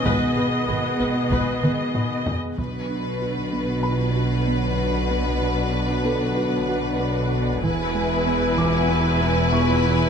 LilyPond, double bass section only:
\new Staff \with { instrumentName = "Double bass section" } { \clef bass \time 4/4 \key b \minor \tempo 4 = 95 gis,,8 gis,,8 gis,,8 gis,,8 gis,,8 gis,,8 r4 | b,,1~ | b,,1 | e,,1 | }